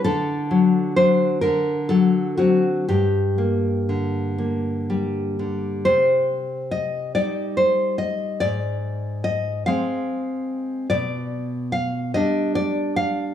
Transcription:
\new Staff \with { instrumentName = "Nylon-string guitar" } { \time 6/8 \key g \minor \tempo 4. = 47 << { a'4 c''8 bes'8 a'8 fis'8 | g'2~ g'8 r8 | \key c \minor c''4 ees''8 d''8 c''8 ees''8 | d''4 ees''8 f''4. |
d''4 f''8 ees''8 d''8 f''8 | } \\ { d8 fis8 <fis d'>8 d8 fis8 <fis c'>8 | g,8 bes8 d8 bes8 g8 d8 | c4. <g ees'>4. | aes,4. <aes c'>4. |
b,4. <g d'>4. | } >> }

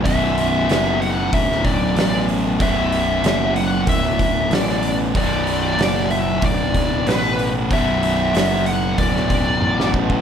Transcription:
<<
  \new Staff \with { instrumentName = "Lead electric guitar" } { \time 4/4 \key b \minor \tempo 4 = 94 e''4. fis''8 e''8 d''4 r8 | e''4. fis''8 e''4 d''8. r16 | d''4. e''8 d''4 b'8. r16 | e''4. fis''8 d''4. r8 | }
  \new Staff \with { instrumentName = "Distorted electric guitar" } { \clef bass \time 4/4 \key b \minor <b,, fis, b,>1 | <b,, fis, b,>1 | <b,, fis, b,>1 | <b,, fis, b,>1 | }
  \new Staff \with { instrumentName = "Picked electric bass" } { \clef bass \time 4/4 \key b \minor b,,,4 fis,,4 d,,4 a,,4 | b,,,4 fis,,4 d,,4 a,,4 | b,,,4 fis,,4 d,,4 a,,4 | b,,,4 fis,,4 d,,4 a,,4 | }
  \new DrumStaff \with { instrumentName = "Drums" } \drummode { \time 4/4 <hho bd>8 hho8 <hho sn>8 hho8 <hho bd>16 sn16 <hho bd>8 <hho sn>8 hho8 | <hho bd>8 hho8 <hho sn>8 hho8 <hho bd>8 <hho bd>8 <hho sn>16 sn16 hho8 | <hho bd>8 hho8 <hho sn>8 hho8 <hho bd>8 <hho bd>8 <hho sn>8 hho8 | <hho bd>8 hho8 <hho sn>8 hho8 <hho bd>16 sn16 <hho bd>8 tommh16 sn16 bd16 bd16 | }
>>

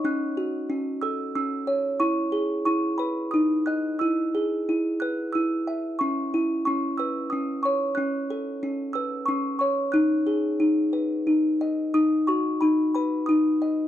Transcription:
\new Staff \with { instrumentName = "Music box" } { \time 3/4 \key b \mixolydian \tempo 4 = 91 << { fis'''4 r8 e'''8 e'''4 | cis'''4 cis'''8 b''8 dis'''8 fis'''8 | e'''4. fis'''8 e'''4 | cis'''4 cis'''8 e'''8 dis'''8 cis'''8 |
fis'''4. e'''8 cis'''8 cis'''8 | fis'''2 r4 | dis'''8 cis'''8 b''8 b''8 dis'''4 | } \\ { cis'8 fis'8 cis'8 a'8 cis'8 cis''8 | e'8 gis'8 e'8 b'8 dis'8 dis''8 | e'8 gis'8 e'8 b'8 e'8 e''8 | cis'8 e'8 cis'8 b'8 cis'8 cis''8 |
cis'8 a'8 cis'8 b'8 cis'8 cis''8 | dis'8 gis'8 dis'8 b'8 dis'8 dis''8 | dis'8 fis'8 dis'8 b'8 dis'8 dis''8 | } >> }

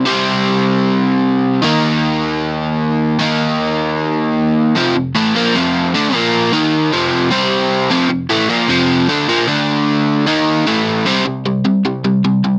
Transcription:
\new Staff \with { instrumentName = "Overdriven electric guitar" } { \clef bass \time 4/4 \key f \mixolydian \tempo 4 = 153 <c g c'>1 | <ees bes ees'>1 | <ees bes ees'>1 | <f, c f>8 <f, c>8 <a, e a>8 <bes, f bes>8 <f, c f>4 <d a d'>8 <bes, f bes>8~ |
<bes, f bes>8 <ees bes ees'>4 <f, c f>4 <c g c'>4. | <f, c f>8 <f, c>8 <a, e a>8 <bes, f bes>8 <f, c f>4 <d a d'>8 <bes, f bes>8 | <d a d'>2 <ees bes ees'>4 <a, e a>4 | <c g c'>8 <c g>8 <c g>8 <c g>8 <c g>8 <c g>8 <c g>8 <c g>8 | }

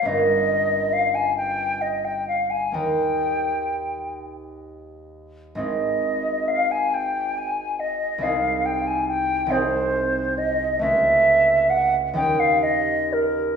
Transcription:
<<
  \new Staff \with { instrumentName = "Flute" } { \time 6/8 \key aes \major \tempo 4. = 45 ees''4 f''16 aes''16 g''8 ees''16 g''16 f''16 aes''16 | g''4. r4. | ees''4 f''16 aes''16 g''8 aes''8 ees''8 | f''8 g''16 aes''16 g''8 c''4 ees''8 |
e''4 ges''8 g''16 f''16 ees''8 bes'8 | }
  \new Staff \with { instrumentName = "Harp" } { \time 6/8 \key aes \major <g,, bes des' bes'>2. | <ees, bes ees' bes'>2. | <aes,, c' ees' aes'>2. | <c, c' ees' aes'>4. <c, c' ees' aes'>4. |
<cis, a cis' a'>4. <ees, bes des' g'>4. | }
>>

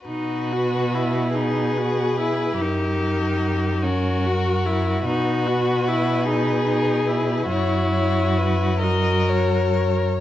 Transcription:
<<
  \new Staff \with { instrumentName = "Violin" } { \time 6/8 \key b \major \tempo 4. = 48 b'4. b'4. | ais'4. ais'4. | b'2. | cis''8 cis''8 b'8 dis''8 cis''4 | }
  \new Staff \with { instrumentName = "Violin" } { \time 6/8 \key b \major fis'4. gis'4. | g'4. fis'4. | fis'4. gis'4. | fis'4. ais'4~ ais'16 r16 | }
  \new Staff \with { instrumentName = "Viola" } { \time 6/8 \key b \major dis'8 fis'8 e'8 dis'8 fis'8 e'8 | dis'4. cis'8 fis'8 e'8 | dis'8 fis'8 e'8 dis'8 dis'8 e'8~ | e'4. fis'4~ fis'16 r16 | }
  \new Staff \with { instrumentName = "Cello" } { \clef bass \time 6/8 \key b \major b,2. | fis,2. | b,2. | fis,2~ fis,8. r16 | }
>>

